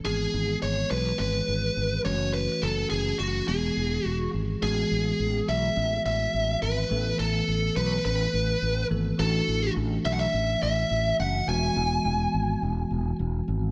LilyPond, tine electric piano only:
\new Staff \with { instrumentName = "Tine electric piano" } { \time 4/4 \key e \mixolydian \tempo 4 = 105 <e gis b gis'>2.~ <e gis b gis'>8 <e gis a cis' fis'>8~ | <e gis a cis' fis'>2 <e gis b gis'>2 | <e gis b fis'>1 | <e a b a'>2.~ <e a b a'>8 <e a b a'>8 |
<e a d' fis'>1 | <e gis b fis'>1 | }